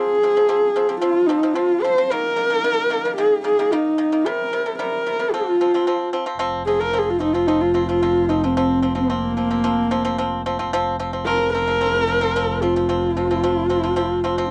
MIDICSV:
0, 0, Header, 1, 4, 480
1, 0, Start_track
1, 0, Tempo, 539568
1, 1863, Time_signature, 4, 2, 24, 8
1, 12907, End_track
2, 0, Start_track
2, 0, Title_t, "Horsehead fiddle"
2, 0, Program_c, 0, 110
2, 0, Note_on_c, 0, 68, 98
2, 889, Note_off_c, 0, 68, 0
2, 894, Note_on_c, 0, 65, 97
2, 1127, Note_on_c, 0, 63, 88
2, 1140, Note_off_c, 0, 65, 0
2, 1366, Note_on_c, 0, 65, 91
2, 1379, Note_off_c, 0, 63, 0
2, 1621, Note_on_c, 0, 72, 96
2, 1634, Note_off_c, 0, 65, 0
2, 1874, Note_on_c, 0, 70, 113
2, 1887, Note_off_c, 0, 72, 0
2, 2814, Note_off_c, 0, 70, 0
2, 2819, Note_on_c, 0, 68, 96
2, 3043, Note_off_c, 0, 68, 0
2, 3079, Note_on_c, 0, 68, 91
2, 3307, Note_on_c, 0, 63, 87
2, 3320, Note_off_c, 0, 68, 0
2, 3791, Note_on_c, 0, 70, 90
2, 3804, Note_off_c, 0, 63, 0
2, 4251, Note_off_c, 0, 70, 0
2, 4256, Note_on_c, 0, 70, 82
2, 4732, Note_on_c, 0, 65, 87
2, 4746, Note_off_c, 0, 70, 0
2, 5456, Note_off_c, 0, 65, 0
2, 5923, Note_on_c, 0, 68, 93
2, 6048, Note_on_c, 0, 70, 91
2, 6062, Note_off_c, 0, 68, 0
2, 6217, Note_on_c, 0, 68, 82
2, 6230, Note_off_c, 0, 70, 0
2, 6315, Note_on_c, 0, 65, 76
2, 6328, Note_off_c, 0, 68, 0
2, 6412, Note_off_c, 0, 65, 0
2, 6417, Note_on_c, 0, 63, 81
2, 6518, Note_on_c, 0, 65, 82
2, 6532, Note_off_c, 0, 63, 0
2, 6642, Note_on_c, 0, 63, 91
2, 6655, Note_off_c, 0, 65, 0
2, 6771, Note_on_c, 0, 65, 80
2, 6784, Note_off_c, 0, 63, 0
2, 7004, Note_off_c, 0, 65, 0
2, 7009, Note_on_c, 0, 65, 87
2, 7374, Note_on_c, 0, 63, 76
2, 7387, Note_off_c, 0, 65, 0
2, 7507, Note_on_c, 0, 60, 74
2, 7521, Note_off_c, 0, 63, 0
2, 7986, Note_off_c, 0, 60, 0
2, 7996, Note_on_c, 0, 58, 86
2, 9424, Note_off_c, 0, 58, 0
2, 10015, Note_on_c, 0, 70, 97
2, 10244, Note_off_c, 0, 70, 0
2, 10258, Note_on_c, 0, 70, 109
2, 11231, Note_on_c, 0, 65, 77
2, 11244, Note_off_c, 0, 70, 0
2, 12892, Note_off_c, 0, 65, 0
2, 12907, End_track
3, 0, Start_track
3, 0, Title_t, "Pipa"
3, 0, Program_c, 1, 105
3, 0, Note_on_c, 1, 53, 90
3, 0, Note_on_c, 1, 60, 96
3, 145, Note_off_c, 1, 53, 0
3, 145, Note_off_c, 1, 60, 0
3, 207, Note_on_c, 1, 53, 67
3, 213, Note_on_c, 1, 60, 76
3, 294, Note_off_c, 1, 53, 0
3, 295, Note_off_c, 1, 60, 0
3, 326, Note_on_c, 1, 53, 58
3, 329, Note_on_c, 1, 60, 68
3, 412, Note_off_c, 1, 53, 0
3, 413, Note_off_c, 1, 60, 0
3, 433, Note_on_c, 1, 53, 84
3, 437, Note_on_c, 1, 60, 94
3, 621, Note_off_c, 1, 53, 0
3, 623, Note_off_c, 1, 60, 0
3, 674, Note_on_c, 1, 53, 75
3, 681, Note_on_c, 1, 60, 76
3, 766, Note_off_c, 1, 53, 0
3, 768, Note_off_c, 1, 60, 0
3, 790, Note_on_c, 1, 53, 65
3, 792, Note_on_c, 1, 60, 68
3, 884, Note_off_c, 1, 53, 0
3, 884, Note_off_c, 1, 60, 0
3, 902, Note_on_c, 1, 53, 78
3, 907, Note_on_c, 1, 60, 96
3, 1095, Note_off_c, 1, 53, 0
3, 1096, Note_off_c, 1, 60, 0
3, 1148, Note_on_c, 1, 53, 79
3, 1155, Note_on_c, 1, 60, 83
3, 1242, Note_off_c, 1, 53, 0
3, 1244, Note_off_c, 1, 60, 0
3, 1274, Note_on_c, 1, 53, 73
3, 1277, Note_on_c, 1, 60, 76
3, 1365, Note_off_c, 1, 60, 0
3, 1366, Note_off_c, 1, 53, 0
3, 1382, Note_on_c, 1, 53, 80
3, 1387, Note_on_c, 1, 60, 95
3, 1575, Note_off_c, 1, 53, 0
3, 1577, Note_off_c, 1, 60, 0
3, 1640, Note_on_c, 1, 53, 73
3, 1646, Note_on_c, 1, 60, 81
3, 1727, Note_off_c, 1, 53, 0
3, 1730, Note_off_c, 1, 60, 0
3, 1761, Note_on_c, 1, 53, 75
3, 1763, Note_on_c, 1, 60, 80
3, 1848, Note_off_c, 1, 53, 0
3, 1848, Note_off_c, 1, 60, 0
3, 1879, Note_on_c, 1, 51, 94
3, 1883, Note_on_c, 1, 58, 96
3, 2063, Note_off_c, 1, 51, 0
3, 2064, Note_off_c, 1, 58, 0
3, 2101, Note_on_c, 1, 51, 63
3, 2106, Note_on_c, 1, 58, 72
3, 2197, Note_off_c, 1, 51, 0
3, 2200, Note_off_c, 1, 58, 0
3, 2224, Note_on_c, 1, 51, 62
3, 2227, Note_on_c, 1, 58, 73
3, 2319, Note_off_c, 1, 51, 0
3, 2319, Note_off_c, 1, 58, 0
3, 2350, Note_on_c, 1, 51, 87
3, 2353, Note_on_c, 1, 58, 89
3, 2537, Note_off_c, 1, 51, 0
3, 2538, Note_off_c, 1, 58, 0
3, 2583, Note_on_c, 1, 51, 72
3, 2588, Note_on_c, 1, 58, 82
3, 2678, Note_off_c, 1, 51, 0
3, 2680, Note_off_c, 1, 58, 0
3, 2715, Note_on_c, 1, 51, 67
3, 2718, Note_on_c, 1, 58, 75
3, 2804, Note_off_c, 1, 51, 0
3, 2804, Note_off_c, 1, 58, 0
3, 2829, Note_on_c, 1, 51, 85
3, 2833, Note_on_c, 1, 58, 91
3, 3017, Note_off_c, 1, 51, 0
3, 3018, Note_off_c, 1, 58, 0
3, 3060, Note_on_c, 1, 51, 70
3, 3065, Note_on_c, 1, 58, 76
3, 3156, Note_off_c, 1, 51, 0
3, 3158, Note_off_c, 1, 58, 0
3, 3194, Note_on_c, 1, 51, 75
3, 3197, Note_on_c, 1, 58, 81
3, 3283, Note_off_c, 1, 51, 0
3, 3283, Note_off_c, 1, 58, 0
3, 3311, Note_on_c, 1, 51, 81
3, 3317, Note_on_c, 1, 58, 101
3, 3498, Note_off_c, 1, 51, 0
3, 3499, Note_off_c, 1, 58, 0
3, 3541, Note_on_c, 1, 58, 78
3, 3546, Note_on_c, 1, 51, 69
3, 3636, Note_off_c, 1, 58, 0
3, 3639, Note_off_c, 1, 51, 0
3, 3668, Note_on_c, 1, 51, 69
3, 3669, Note_on_c, 1, 58, 75
3, 3759, Note_off_c, 1, 58, 0
3, 3760, Note_off_c, 1, 51, 0
3, 3790, Note_on_c, 1, 48, 86
3, 3792, Note_on_c, 1, 55, 95
3, 3976, Note_off_c, 1, 55, 0
3, 3977, Note_off_c, 1, 48, 0
3, 4029, Note_on_c, 1, 48, 66
3, 4031, Note_on_c, 1, 55, 70
3, 4120, Note_off_c, 1, 48, 0
3, 4120, Note_off_c, 1, 55, 0
3, 4144, Note_on_c, 1, 55, 61
3, 4147, Note_on_c, 1, 48, 58
3, 4237, Note_off_c, 1, 55, 0
3, 4239, Note_off_c, 1, 48, 0
3, 4262, Note_on_c, 1, 48, 89
3, 4266, Note_on_c, 1, 55, 86
3, 4452, Note_off_c, 1, 48, 0
3, 4454, Note_off_c, 1, 55, 0
3, 4505, Note_on_c, 1, 55, 65
3, 4510, Note_on_c, 1, 48, 62
3, 4598, Note_off_c, 1, 55, 0
3, 4600, Note_off_c, 1, 48, 0
3, 4620, Note_on_c, 1, 48, 61
3, 4624, Note_on_c, 1, 55, 73
3, 4715, Note_off_c, 1, 48, 0
3, 4717, Note_off_c, 1, 55, 0
3, 4748, Note_on_c, 1, 53, 76
3, 4750, Note_on_c, 1, 60, 87
3, 4936, Note_off_c, 1, 53, 0
3, 4936, Note_off_c, 1, 60, 0
3, 4990, Note_on_c, 1, 53, 72
3, 4992, Note_on_c, 1, 60, 76
3, 5080, Note_off_c, 1, 60, 0
3, 5081, Note_off_c, 1, 53, 0
3, 5109, Note_on_c, 1, 53, 71
3, 5113, Note_on_c, 1, 60, 78
3, 5200, Note_off_c, 1, 53, 0
3, 5201, Note_off_c, 1, 60, 0
3, 5223, Note_on_c, 1, 60, 89
3, 5227, Note_on_c, 1, 53, 85
3, 5413, Note_off_c, 1, 60, 0
3, 5415, Note_off_c, 1, 53, 0
3, 5453, Note_on_c, 1, 60, 87
3, 5455, Note_on_c, 1, 53, 73
3, 5552, Note_off_c, 1, 60, 0
3, 5553, Note_off_c, 1, 53, 0
3, 5570, Note_on_c, 1, 53, 78
3, 5574, Note_on_c, 1, 60, 83
3, 5671, Note_off_c, 1, 53, 0
3, 5671, Note_off_c, 1, 60, 0
3, 5686, Note_on_c, 1, 53, 90
3, 5690, Note_on_c, 1, 60, 109
3, 5885, Note_off_c, 1, 53, 0
3, 5886, Note_off_c, 1, 60, 0
3, 5937, Note_on_c, 1, 53, 65
3, 5940, Note_on_c, 1, 60, 69
3, 6034, Note_off_c, 1, 53, 0
3, 6034, Note_off_c, 1, 60, 0
3, 6055, Note_on_c, 1, 60, 63
3, 6056, Note_on_c, 1, 53, 58
3, 6152, Note_off_c, 1, 60, 0
3, 6154, Note_off_c, 1, 53, 0
3, 6167, Note_on_c, 1, 53, 76
3, 6172, Note_on_c, 1, 60, 83
3, 6366, Note_off_c, 1, 53, 0
3, 6367, Note_off_c, 1, 60, 0
3, 6406, Note_on_c, 1, 53, 55
3, 6410, Note_on_c, 1, 60, 66
3, 6509, Note_off_c, 1, 53, 0
3, 6510, Note_off_c, 1, 60, 0
3, 6533, Note_on_c, 1, 53, 62
3, 6538, Note_on_c, 1, 60, 68
3, 6633, Note_off_c, 1, 53, 0
3, 6635, Note_off_c, 1, 60, 0
3, 6653, Note_on_c, 1, 53, 83
3, 6656, Note_on_c, 1, 60, 82
3, 6849, Note_off_c, 1, 53, 0
3, 6850, Note_off_c, 1, 60, 0
3, 6887, Note_on_c, 1, 53, 63
3, 6892, Note_on_c, 1, 60, 71
3, 6990, Note_off_c, 1, 53, 0
3, 6991, Note_off_c, 1, 60, 0
3, 7016, Note_on_c, 1, 53, 65
3, 7023, Note_on_c, 1, 60, 72
3, 7115, Note_off_c, 1, 53, 0
3, 7117, Note_off_c, 1, 60, 0
3, 7139, Note_on_c, 1, 53, 80
3, 7141, Note_on_c, 1, 60, 82
3, 7333, Note_off_c, 1, 53, 0
3, 7333, Note_off_c, 1, 60, 0
3, 7376, Note_on_c, 1, 53, 70
3, 7381, Note_on_c, 1, 60, 75
3, 7475, Note_off_c, 1, 53, 0
3, 7478, Note_off_c, 1, 60, 0
3, 7505, Note_on_c, 1, 60, 69
3, 7510, Note_on_c, 1, 53, 68
3, 7600, Note_off_c, 1, 60, 0
3, 7602, Note_off_c, 1, 53, 0
3, 7624, Note_on_c, 1, 53, 90
3, 7624, Note_on_c, 1, 60, 96
3, 7815, Note_off_c, 1, 53, 0
3, 7815, Note_off_c, 1, 60, 0
3, 7851, Note_on_c, 1, 60, 66
3, 7855, Note_on_c, 1, 53, 65
3, 7952, Note_off_c, 1, 53, 0
3, 7953, Note_off_c, 1, 60, 0
3, 7962, Note_on_c, 1, 53, 61
3, 7965, Note_on_c, 1, 60, 64
3, 8069, Note_off_c, 1, 53, 0
3, 8069, Note_off_c, 1, 60, 0
3, 8091, Note_on_c, 1, 53, 82
3, 8096, Note_on_c, 1, 60, 82
3, 8290, Note_off_c, 1, 53, 0
3, 8291, Note_off_c, 1, 60, 0
3, 8335, Note_on_c, 1, 53, 59
3, 8341, Note_on_c, 1, 60, 62
3, 8435, Note_off_c, 1, 53, 0
3, 8439, Note_off_c, 1, 60, 0
3, 8456, Note_on_c, 1, 53, 63
3, 8460, Note_on_c, 1, 60, 70
3, 8557, Note_off_c, 1, 53, 0
3, 8557, Note_off_c, 1, 60, 0
3, 8575, Note_on_c, 1, 53, 95
3, 8575, Note_on_c, 1, 60, 101
3, 8772, Note_off_c, 1, 53, 0
3, 8772, Note_off_c, 1, 60, 0
3, 8816, Note_on_c, 1, 53, 84
3, 8819, Note_on_c, 1, 60, 92
3, 8917, Note_off_c, 1, 53, 0
3, 8917, Note_off_c, 1, 60, 0
3, 8937, Note_on_c, 1, 53, 85
3, 8941, Note_on_c, 1, 60, 92
3, 9038, Note_off_c, 1, 53, 0
3, 9038, Note_off_c, 1, 60, 0
3, 9059, Note_on_c, 1, 53, 92
3, 9063, Note_on_c, 1, 60, 101
3, 9255, Note_off_c, 1, 53, 0
3, 9257, Note_off_c, 1, 60, 0
3, 9305, Note_on_c, 1, 53, 85
3, 9307, Note_on_c, 1, 60, 85
3, 9402, Note_off_c, 1, 53, 0
3, 9402, Note_off_c, 1, 60, 0
3, 9422, Note_on_c, 1, 53, 80
3, 9424, Note_on_c, 1, 60, 87
3, 9521, Note_off_c, 1, 53, 0
3, 9521, Note_off_c, 1, 60, 0
3, 9547, Note_on_c, 1, 53, 114
3, 9553, Note_on_c, 1, 60, 123
3, 9740, Note_off_c, 1, 53, 0
3, 9741, Note_off_c, 1, 60, 0
3, 9781, Note_on_c, 1, 53, 73
3, 9785, Note_on_c, 1, 60, 85
3, 9881, Note_off_c, 1, 53, 0
3, 9882, Note_off_c, 1, 60, 0
3, 9902, Note_on_c, 1, 53, 64
3, 9902, Note_on_c, 1, 60, 66
3, 10000, Note_off_c, 1, 60, 0
3, 10002, Note_off_c, 1, 53, 0
3, 10024, Note_on_c, 1, 53, 86
3, 10027, Note_on_c, 1, 60, 83
3, 10219, Note_off_c, 1, 53, 0
3, 10219, Note_off_c, 1, 60, 0
3, 10270, Note_on_c, 1, 53, 65
3, 10274, Note_on_c, 1, 60, 67
3, 10366, Note_off_c, 1, 53, 0
3, 10367, Note_off_c, 1, 60, 0
3, 10387, Note_on_c, 1, 53, 66
3, 10388, Note_on_c, 1, 60, 70
3, 10483, Note_off_c, 1, 60, 0
3, 10484, Note_off_c, 1, 53, 0
3, 10506, Note_on_c, 1, 60, 84
3, 10511, Note_on_c, 1, 53, 76
3, 10700, Note_off_c, 1, 60, 0
3, 10702, Note_off_c, 1, 53, 0
3, 10740, Note_on_c, 1, 53, 74
3, 10749, Note_on_c, 1, 60, 75
3, 10841, Note_off_c, 1, 53, 0
3, 10846, Note_off_c, 1, 60, 0
3, 10863, Note_on_c, 1, 60, 90
3, 10868, Note_on_c, 1, 53, 75
3, 10963, Note_off_c, 1, 60, 0
3, 10965, Note_off_c, 1, 53, 0
3, 10995, Note_on_c, 1, 53, 92
3, 10999, Note_on_c, 1, 60, 101
3, 11185, Note_off_c, 1, 53, 0
3, 11186, Note_off_c, 1, 60, 0
3, 11226, Note_on_c, 1, 53, 62
3, 11232, Note_on_c, 1, 60, 79
3, 11324, Note_off_c, 1, 53, 0
3, 11326, Note_off_c, 1, 60, 0
3, 11352, Note_on_c, 1, 53, 69
3, 11355, Note_on_c, 1, 60, 74
3, 11448, Note_off_c, 1, 53, 0
3, 11448, Note_off_c, 1, 60, 0
3, 11466, Note_on_c, 1, 53, 84
3, 11471, Note_on_c, 1, 60, 94
3, 11660, Note_off_c, 1, 53, 0
3, 11663, Note_off_c, 1, 60, 0
3, 11713, Note_on_c, 1, 53, 64
3, 11716, Note_on_c, 1, 60, 68
3, 11808, Note_off_c, 1, 53, 0
3, 11809, Note_off_c, 1, 60, 0
3, 11837, Note_on_c, 1, 53, 65
3, 11841, Note_on_c, 1, 60, 77
3, 11930, Note_off_c, 1, 60, 0
3, 11931, Note_off_c, 1, 53, 0
3, 11952, Note_on_c, 1, 53, 94
3, 11952, Note_on_c, 1, 60, 93
3, 12143, Note_off_c, 1, 60, 0
3, 12144, Note_off_c, 1, 53, 0
3, 12183, Note_on_c, 1, 53, 69
3, 12188, Note_on_c, 1, 60, 79
3, 12283, Note_off_c, 1, 53, 0
3, 12285, Note_off_c, 1, 60, 0
3, 12308, Note_on_c, 1, 53, 70
3, 12308, Note_on_c, 1, 60, 79
3, 12405, Note_off_c, 1, 53, 0
3, 12405, Note_off_c, 1, 60, 0
3, 12420, Note_on_c, 1, 53, 91
3, 12425, Note_on_c, 1, 60, 103
3, 12617, Note_off_c, 1, 53, 0
3, 12620, Note_off_c, 1, 60, 0
3, 12666, Note_on_c, 1, 53, 77
3, 12673, Note_on_c, 1, 60, 89
3, 12765, Note_off_c, 1, 53, 0
3, 12767, Note_off_c, 1, 60, 0
3, 12791, Note_on_c, 1, 53, 77
3, 12795, Note_on_c, 1, 60, 89
3, 12887, Note_off_c, 1, 53, 0
3, 12888, Note_off_c, 1, 60, 0
3, 12907, End_track
4, 0, Start_track
4, 0, Title_t, "Double bass"
4, 0, Program_c, 2, 43
4, 5681, Note_on_c, 2, 29, 62
4, 9521, Note_off_c, 2, 29, 0
4, 9526, Note_on_c, 2, 29, 62
4, 12907, Note_off_c, 2, 29, 0
4, 12907, End_track
0, 0, End_of_file